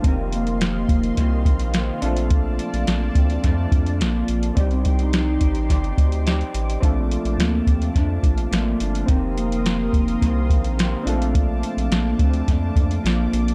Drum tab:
HH |x-xxx-xxx-xxx-xx|x-xxx-xxx-xxx-xx|xxxxx-xxxxxxxxxx|x-xxx-xxx-xxx-xx|
SD |----o---o---o---|----o---o---o---|----o---o---o---|----o---o---o---|
BD |o-----o-o-o-----|o-----o-o-o-----|o-o---o-o-o-----|o-----o-o-o-----|

HH |x-xxx-xxx-xxx-xx|x-xxx-xxx-xxx-xx|
SD |----o---o---o---|----o---o---o---|
BD |o-----o-o-o-----|o-----o-o-o-----|